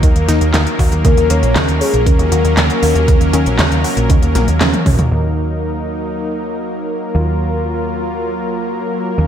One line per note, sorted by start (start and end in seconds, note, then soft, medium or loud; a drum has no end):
0.00 0.15 D#2 loud
0.00 0.21 D#3 medium
0.00 1.01 F#3 medium
0.00 5.07 A#3 medium
0.00 1.01 D#4 medium
0.00 1.01 A#4 medium
0.00 kick loud
0.00 closed hi-hat medium
0.16 0.27 D#2 medium
0.16 closed hi-hat soft
0.28 0.40 D#2 loud
0.28 0.47 D#4 loud
0.28 snare soft
0.28 closed hi-hat medium
0.41 0.53 D#2 medium
0.41 closed hi-hat soft
0.54 0.65 D#2 loud
0.54 0.72 D#3 loud
0.54 snare loud
0.54 clap medium
0.54 closed hi-hat medium
0.67 closed hi-hat soft
0.79 0.91 D#2 loud
0.79 0.98 F#4 medium
0.79 kick medium
0.79 open hi-hat medium
0.92 1.04 D#2 medium
0.92 closed hi-hat soft
1.05 1.16 D#2 loud
1.05 1.16 C#3 loud
1.05 5.07 F#3 medium
1.05 5.07 C#4 medium
1.05 1.32 A#4 loud
1.05 5.08 A#4 medium
1.05 kick loud
1.05 closed hi-hat medium
1.17 1.29 D#2 medium
1.17 closed hi-hat soft
1.30 1.42 D#2 loud
1.30 1.41 A#3 loud
1.30 1.57 C#5 loud
1.30 closed hi-hat medium
1.43 1.55 A#1 medium
1.43 closed hi-hat soft
1.55 1.67 D#2 loud
1.55 1.67 C#3 loud
1.55 1.82 A#4 loud
1.55 snare loud
1.55 clap loud
1.55 closed hi-hat medium
1.68 1.80 D#2 medium
1.68 closed hi-hat soft
1.81 1.99 C#4 medium
1.81 2.06 G#4 loud
1.81 open hi-hat medium
1.94 2.05 A#1 medium
1.94 closed hi-hat soft
2.06 2.18 D#2 loud
2.06 2.25 C#3 medium
2.06 4.57 A#4 loud
2.06 kick loud
2.06 closed hi-hat medium
2.19 2.31 D#2 medium
2.19 closed hi-hat soft
2.32 2.43 D#2 loud
2.32 2.43 F#4 medium
2.32 closed hi-hat medium
2.44 2.56 D#2 medium
2.44 closed hi-hat soft
2.57 2.69 D#2 loud
2.57 2.76 C#3 medium
2.57 snare loud
2.57 clap loud
2.57 closed hi-hat medium
2.70 closed hi-hat soft
2.83 2.94 D#2 medium
2.83 3.01 A#3 medium
2.83 open hi-hat medium
2.95 3.07 D#2 medium
2.95 closed hi-hat soft
3.08 3.20 D#2 loud
3.08 3.26 C#3 medium
3.08 kick loud
3.08 closed hi-hat medium
3.21 3.32 D#2 medium
3.21 closed hi-hat soft
3.33 3.45 D#2 medium
3.33 3.52 C#4 loud
3.33 closed hi-hat loud
3.46 3.58 A#1 medium
3.46 closed hi-hat soft
3.59 3.70 D#2 loud
3.59 3.77 C#3 loud
3.59 snare loud
3.59 clap loud
3.59 closed hi-hat medium
3.72 3.83 D#2 medium
3.72 closed hi-hat soft
3.84 4.03 F#4 medium
3.84 open hi-hat medium
3.97 4.09 A#1 medium
3.97 closed hi-hat soft
4.10 4.21 D#2 loud
4.10 4.21 C#3 loud
4.10 kick loud
4.10 closed hi-hat medium
4.22 4.34 D#2 medium
4.22 closed hi-hat soft
4.35 4.47 A#1 loud
4.35 4.46 A#3 loud
4.35 snare soft
4.35 closed hi-hat loud
4.35 high tom medium
4.48 4.60 D#2 medium
4.48 closed hi-hat soft
4.61 4.72 D#2 loud
4.61 4.72 C#3 loud
4.61 snare loud
4.61 clap loud
4.61 closed hi-hat medium
4.61 mid tom medium
4.73 closed hi-hat soft
4.73 mid tom medium
4.86 4.98 D#2 medium
4.86 5.04 C#4 medium
4.86 kick medium
4.86 mid tom loud
4.86 open hi-hat medium
4.99 5.10 D#2 medium
4.99 closed hi-hat soft
4.99 mid tom medium
5.11 7.12 D#2 medium
5.11 9.27 F#3 medium
5.11 9.27 A#3 medium
5.11 7.13 D#4 medium
5.11 9.27 A#4 medium
7.15 9.16 D#2 medium
7.15 9.16 F4 medium
9.18 9.27 D#2 medium
9.18 9.27 C#4 medium